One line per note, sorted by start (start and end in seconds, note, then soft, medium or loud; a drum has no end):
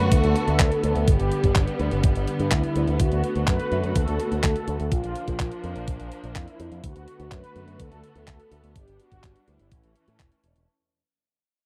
0.00 4.88 D3 medium
0.00 1.06 A3 medium
0.00 4.88 B3 medium
0.00 1.06 F#4 medium
0.00 0.13 B4 loud
0.12 0.21 D2 medium
0.12 1.10 A4 loud
0.12 kick loud
0.12 closed hi-hat medium
0.24 0.33 D2 medium
0.24 closed hi-hat soft
0.36 closed hi-hat medium
0.48 0.57 D2 medium
0.48 closed hi-hat soft
0.60 0.69 D2 medium
0.60 kick loud
0.60 clap loud
0.60 closed hi-hat medium
0.72 closed hi-hat soft
0.84 0.93 D2 medium
0.84 closed hi-hat medium
0.96 1.05 D2 medium
0.96 closed hi-hat soft
1.08 1.17 G1 medium
1.08 2.98 G3 medium
1.08 1.76 G4 loud
1.08 kick loud
1.08 closed hi-hat medium
1.20 1.29 G1 medium
1.20 closed hi-hat soft
1.32 closed hi-hat medium
1.44 1.53 G1 medium
1.44 kick medium
1.44 closed hi-hat soft
1.55 1.65 G1 medium
1.55 kick loud
1.55 clap loud
1.55 closed hi-hat medium
1.68 closed hi-hat soft
1.79 1.89 D2 medium
1.79 closed hi-hat soft
1.91 2.01 G1 medium
1.91 closed hi-hat soft
2.03 2.13 G1 medium
2.03 kick loud
2.03 closed hi-hat medium
2.15 2.25 G1 medium
2.15 closed hi-hat soft
2.28 closed hi-hat medium
2.40 2.49 G2 medium
2.40 closed hi-hat soft
2.51 2.61 D2 loud
2.51 3.01 E4 medium
2.51 kick loud
2.51 clap loud
2.51 closed hi-hat medium
2.64 closed hi-hat soft
2.76 2.85 D2 medium
2.76 closed hi-hat medium
2.88 2.97 D2 medium
2.88 closed hi-hat soft
3.00 3.09 D2 medium
3.00 4.90 A3 medium
3.00 4.90 F#4 medium
3.00 3.49 F#4 loud
3.00 kick loud
3.00 closed hi-hat medium
3.12 3.21 D2 medium
3.12 closed hi-hat soft
3.24 closed hi-hat medium
3.36 3.45 D2 medium
3.36 closed hi-hat soft
3.47 3.57 F#2 medium
3.47 3.97 B4 loud
3.47 kick loud
3.47 clap loud
3.47 closed hi-hat medium
3.60 closed hi-hat soft
3.72 3.81 F#2 medium
3.72 closed hi-hat soft
3.84 3.94 F#2 medium
3.84 closed hi-hat soft
3.96 4.05 D2 loud
3.96 4.43 A4 loud
3.96 kick loud
3.96 closed hi-hat medium
4.08 4.17 D2 medium
4.08 closed hi-hat soft
4.20 closed hi-hat medium
4.32 4.41 D2 medium
4.32 closed hi-hat soft
4.44 4.53 D2 medium
4.44 4.93 A4 loud
4.44 kick loud
4.44 clap loud
4.44 closed hi-hat medium
4.56 closed hi-hat soft
4.68 4.77 D2 medium
4.68 closed hi-hat medium
4.80 4.89 D2 medium
4.80 closed hi-hat soft
4.92 5.01 A#1 medium
4.92 6.82 F3 medium
4.92 6.82 A#3 medium
4.92 6.82 D4 medium
4.92 5.39 F4 loud
4.92 kick loud
4.92 closed hi-hat medium
5.04 5.14 A#1 medium
5.04 closed hi-hat soft
5.16 closed hi-hat medium
5.28 5.37 A#1 medium
5.28 kick medium
5.28 closed hi-hat soft
5.40 5.49 A#1 loud
5.40 6.08 F4 medium
5.40 kick loud
5.40 clap loud
5.40 closed hi-hat medium
5.52 closed hi-hat soft
5.64 5.73 F2 medium
5.64 closed hi-hat soft
5.76 5.85 A#1 medium
5.76 closed hi-hat soft
5.88 5.97 A#1 medium
5.88 kick loud
5.88 closed hi-hat medium
6.00 6.09 A#1 medium
6.00 closed hi-hat soft
6.12 closed hi-hat medium
6.24 6.33 A#1 medium
6.24 closed hi-hat soft
6.36 6.45 F2 medium
6.36 6.85 E4 medium
6.36 kick loud
6.36 clap loud
6.36 closed hi-hat medium
6.48 closed hi-hat soft
6.60 6.69 F2 medium
6.60 closed hi-hat medium
6.71 6.81 F2 medium
6.71 closed hi-hat soft
6.84 6.93 D2 medium
6.84 8.74 D3 medium
6.84 8.74 A3 medium
6.84 9.69 B3 medium
6.84 8.74 F#4 medium
6.84 7.33 F#4 loud
6.84 kick loud
6.84 closed hi-hat medium
6.96 7.05 D2 medium
6.96 closed hi-hat soft
7.08 closed hi-hat medium
7.20 7.29 D2 medium
7.20 closed hi-hat soft
7.32 7.41 F#2 medium
7.32 7.81 B4 loud
7.32 kick loud
7.32 clap loud
7.32 closed hi-hat medium
7.44 closed hi-hat soft
7.56 7.65 F#2 medium
7.56 closed hi-hat soft
7.68 7.77 F#2 medium
7.68 closed hi-hat soft
7.79 7.89 D2 medium
7.79 8.27 A4 loud
7.79 kick loud
7.79 closed hi-hat medium
7.92 8.01 D2 medium
7.92 closed hi-hat soft
8.04 closed hi-hat medium
8.16 8.25 D2 medium
8.16 closed hi-hat soft
8.28 8.37 D2 medium
8.28 8.77 A4 loud
8.28 kick loud
8.28 clap loud
8.28 closed hi-hat medium
8.40 closed hi-hat soft
8.52 8.61 D2 medium
8.52 closed hi-hat medium
8.64 8.73 D2 medium
8.64 closed hi-hat soft
8.76 8.85 G1 medium
8.76 9.71 G3 medium
8.76 9.71 D4 medium
8.76 9.00 G4 loud
8.76 kick loud
8.76 closed hi-hat medium
8.88 8.97 G1 medium
8.88 closed hi-hat soft
8.99 9.49 F#4 loud
8.99 closed hi-hat medium
9.12 9.21 G1 medium
9.12 kick medium
9.12 closed hi-hat soft
9.24 9.33 G1 medium
9.24 kick loud
9.24 clap loud
9.24 closed hi-hat medium
9.36 closed hi-hat soft
9.48 9.58 D2 medium
9.48 10.40 E4 medium
9.48 closed hi-hat soft
9.60 9.69 G1 medium
9.60 closed hi-hat soft
9.71 9.81 A1 medium
9.71 10.67 E3 medium
9.71 10.67 A3 medium
9.71 10.67 C#4 medium
9.71 kick loud
9.71 closed hi-hat medium
9.84 9.94 A1 medium
9.84 closed hi-hat soft
9.96 closed hi-hat medium
10.08 10.18 A2 medium
10.08 closed hi-hat soft
10.20 10.29 E1 medium
10.20 kick loud
10.20 clap loud
10.20 closed hi-hat medium
10.32 closed hi-hat soft
10.44 10.53 E1 medium
10.44 closed hi-hat medium
10.56 10.66 E1 medium
10.56 closed hi-hat soft